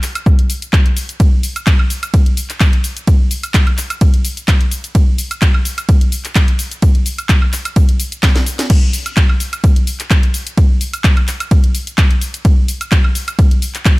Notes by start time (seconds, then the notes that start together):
0.03 clap, open hi-hat, cabasa
0.15 closed hi-hat, cabasa, high woodblock
0.26 kick, cabasa
0.39 closed hi-hat
0.50 open hi-hat, cabasa
0.62 closed hi-hat, cabasa
0.73 kick, clap, cabasa
0.86 closed hi-hat
0.97 open hi-hat, cabasa
1.09 closed hi-hat, cabasa
1.20 kick, ride, cabasa
1.43 open hi-hat, cabasa
1.56 closed hi-hat, cabasa, high woodblock
1.67 kick, clap, ride, cabasa
1.79 high woodblock
1.90 open hi-hat, cabasa
2.03 closed hi-hat, cabasa, high woodblock
2.14 kick, ride, cabasa
2.26 closed hi-hat
2.37 open hi-hat, cabasa
2.50 clap, closed hi-hat, cabasa
2.60 kick, clap, ride, cabasa
2.73 closed hi-hat
2.84 open hi-hat, cabasa
2.97 closed hi-hat, cabasa
3.07 kick, ride, cabasa
3.31 open hi-hat, cabasa
3.43 closed hi-hat, cabasa, high woodblock
3.54 kick, clap, ride, cabasa
3.67 closed hi-hat, high woodblock
3.78 clap, open hi-hat, cabasa
3.90 closed hi-hat, cabasa, high woodblock
4.01 kick, ride, cabasa
4.14 closed hi-hat
4.25 open hi-hat, cabasa
4.37 closed hi-hat, cabasa
4.48 kick, clap, ride, cabasa
4.61 closed hi-hat
4.71 open hi-hat, cabasa
4.84 closed hi-hat, cabasa
4.95 kick, ride, cabasa
5.18 open hi-hat, cabasa
5.31 closed hi-hat, cabasa, high woodblock
5.42 kick, clap, ride, cabasa
5.54 high woodblock
5.65 open hi-hat, cabasa
5.78 closed hi-hat, cabasa, high woodblock
5.89 kick, ride, cabasa
6.01 closed hi-hat
6.12 open hi-hat, cabasa
6.25 clap, closed hi-hat, cabasa
6.35 kick, clap, ride, cabasa
6.48 closed hi-hat
6.59 open hi-hat, cabasa
6.71 closed hi-hat, cabasa
6.82 kick, ride, cabasa
6.95 closed hi-hat
7.06 open hi-hat, cabasa
7.18 closed hi-hat, cabasa, high woodblock
7.29 kick, clap, ride, cabasa
7.42 high woodblock
7.53 clap, open hi-hat, cabasa
7.65 closed hi-hat, cabasa, high woodblock
7.76 kick, ride, cabasa
7.89 closed hi-hat
8.00 open hi-hat, cabasa
8.12 closed hi-hat, cabasa
8.23 kick, snare, clap, ride, cabasa
8.36 snare, closed hi-hat
8.46 open hi-hat, cabasa
8.59 snare, closed hi-hat, cabasa
8.70 kick, crash, ride, cabasa
8.93 open hi-hat, cabasa
9.06 closed hi-hat, cabasa, high woodblock
9.17 kick, clap, ride, cabasa
9.29 high woodblock
9.40 open hi-hat, cabasa
9.53 closed hi-hat, cabasa, high woodblock
9.64 kick, ride, cabasa
9.76 closed hi-hat
9.87 open hi-hat, cabasa
10.00 clap, closed hi-hat, cabasa
10.11 kick, clap, ride, cabasa
10.23 closed hi-hat
10.34 open hi-hat, cabasa
10.47 closed hi-hat, cabasa
10.57 kick, ride, cabasa
10.81 open hi-hat, cabasa
10.93 closed hi-hat, cabasa, high woodblock
11.04 kick, clap, ride, cabasa
11.17 closed hi-hat, high woodblock
11.28 clap, open hi-hat, cabasa
11.40 closed hi-hat, cabasa, high woodblock
11.51 kick, ride, cabasa
11.64 closed hi-hat
11.75 open hi-hat, cabasa
11.87 closed hi-hat, cabasa
11.98 kick, clap, ride, cabasa
12.11 closed hi-hat
12.21 open hi-hat, cabasa
12.34 closed hi-hat, cabasa
12.45 kick, ride, cabasa
12.68 open hi-hat, cabasa
12.81 closed hi-hat, cabasa, high woodblock
12.92 kick, clap, ride, cabasa
13.04 high woodblock
13.15 open hi-hat, cabasa
13.28 closed hi-hat, cabasa, high woodblock
13.39 kick, ride, cabasa
13.51 closed hi-hat
13.62 open hi-hat, cabasa
13.75 clap, closed hi-hat, cabasa
13.85 kick, clap, ride, cabasa